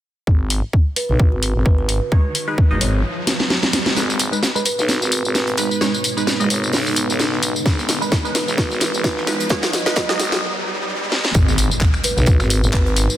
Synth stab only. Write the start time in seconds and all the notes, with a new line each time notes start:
2.12 G#3 D#4 C#5
2.48 G#3 D#4 B4
2.71 G#3 D#4 D#5
3.96 G#3 D#4 B4
4.32 G#3 D#4 B4
4.55 G#3 D#4 B4
5.58 G#3 D#4 B4
5.81 G#3 D#4 C#5
6.17 G#3 D#4 B4
6.40 G#3 D#4 D#5
7.66 G#3 D#4 B4
8.01 G#3 D#4 B4
8.25 G#3 D#4 B4
9.27 G#3 D#4 B4
9.50 G#3 D#4 C#5
9.86 G#3 D#4 B4
10.09 G#3 D#4 D#5